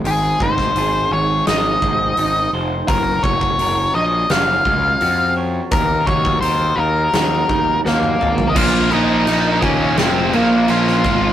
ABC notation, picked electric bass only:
X:1
M:4/4
L:1/8
Q:1/4=84
K:Bbm
V:1 name="Picked electric bass" clef=bass
A,,, A,,, A,,, A,,, A,,, A,,, A,,, F,,, | G,,, G,,, G,,, B,,, G,,, D,, F,,2 | E,, E,, E,, E,, E,, E,, E,, A,,, | B,,, B,,, B,,, E,, F,,, B,,, B,,, A,,, |]